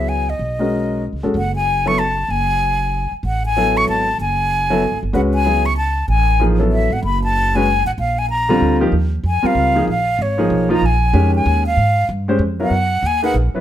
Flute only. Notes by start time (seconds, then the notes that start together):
Already playing: E5
0.09 G#5
0.30 D#5
1.38 F#5
1.56 G#5
1.88 C#6
1.99 A5
2.31 G#5
3.26 F#5
3.46 G#5
3.77 C#6
3.89 A5
4.21 G#5
5.15 F#5
5.34 G#5
5.66 C#6
5.77 A5
6.09 G#5
6.73 E5
6.93 F#5
7.04 B5
7.24 A5
7.56 G#5
7.87 F#5
7.99 F5
8.19 G#5
8.30 A#5
9.27 G#5
9.46 F5
9.90 F5
10.22 C#5
10.72 A#5
10.86 G#5
11.35 G#5
11.67 F5
12.61 F#5
13.06 G#5
13.24 F#5